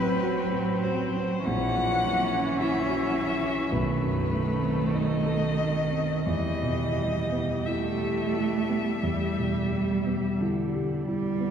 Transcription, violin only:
0.00 0.84 B4 medium
0.83 1.46 C5 medium
1.45 2.60 F#5 medium
2.60 3.72 E5 medium
3.71 4.95 B4 medium
4.94 6.25 D#5 medium
6.26 7.67 D#5 medium
7.65 10.40 E5 soft

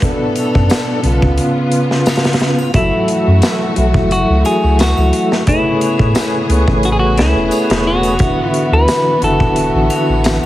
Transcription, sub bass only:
0.55 0.69 F#2 medium
1.04 1.20 B1 medium
1.23 1.38 C#2 medium
2.74 2.90 F#1 loud
3.27 3.41 F#2 medium
3.77 3.93 B1 medium
3.94 4.24 F#1 medium
4.29 4.43 C#2 medium
4.63 4.93 C#2 medium
4.97 5.11 C#2 medium
5.99 6.13 A2 medium
6.49 6.65 C#2 medium
6.68 7.19 A1 medium
7.17 7.34 C#2 medium
7.35 7.50 E1 loud
7.69 8.17 E1 medium
8.20 8.36 D1 loud
8.72 8.86 D2 medium
9.22 9.38 F#1 medium
9.40 9.70 D1 medium
9.75 9.89 A1 medium
10.09 10.39 A1 medium
10.43 10.46 A1 medium

